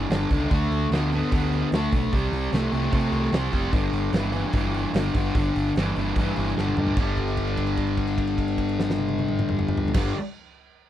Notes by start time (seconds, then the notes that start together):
0.10 G1 G2 D3, snare, open hi-hat
0.22 snare
0.31 C#2 G2 D3, kick, open hi-hat
0.51 D2 D3 A3, kick, open hi-hat
0.70 D2, open hi-hat
0.90 D2 D3 B3, snare, open hi-hat
1.12 D3 B3, open hi-hat
1.32 D2 D3 B3, kick, open hi-hat
1.52 open hi-hat
1.72 D2 D3 A3, snare, open hi-hat
1.92 B1 D3 A3, kick, open hi-hat
2.13 C2 C3 G3, kick, open hi-hat
2.32 C2, open hi-hat
2.52 C2 C3 A3, snare, open hi-hat
2.72 C2 C3 A3, open hi-hat
2.92 C3 A3, kick, open hi-hat
3.12 C2, open hi-hat
3.24 snare
3.32 C2 C3 G3, snare, open hi-hat
3.45 snare
3.52 F1 C3 G3, kick, open hi-hat
3.72 G1 G2 D3, kick, open hi-hat
3.92 G1, open hi-hat
4.12 G1 G2 E3, snare, open hi-hat
4.33 G2 E3, open hi-hat
4.53 G1 G2 E3, kick, open hi-hat
4.74 open hi-hat
4.93 G1 G2 D3, snare, open hi-hat
5.15 G1 G2 D3, kick, open hi-hat
5.35 G1 G2 D3, kick, open hi-hat
5.56 G1, open hi-hat
5.76 G1 G2 E3, snare, open hi-hat
5.96 G1 G2 E3, open hi-hat
6.16 G2 E3, kick, open hi-hat
6.36 G1, open hi-hat
6.48 snare
6.57 G1 G2 D3, snare
6.67 high tom
6.77 G2 D3, mid tom
6.87 floor tom
6.97 G1 G2 D3, kick, crash
7.01 G3
7.17 kick, crash
7.28 crash
7.37 kick, crash
7.47 crash
7.57 kick, crash
7.67 crash
7.77 kick, crash
7.87 crash
7.97 kick, crash
8.07 crash
8.18 kick, crash
8.27 crash
8.38 kick, crash
8.48 crash
8.58 kick, crash
8.69 crash
8.80 snare
8.90 snare
8.98 high tom
9.08 high tom
9.19 high tom
9.29 mid tom
9.39 mid tom
9.49 mid tom
9.59 mid tom
9.68 mid tom
9.77 floor tom
9.88 floor tom
9.94 G1 G2 D3, kick, snare, crash
9.98 G3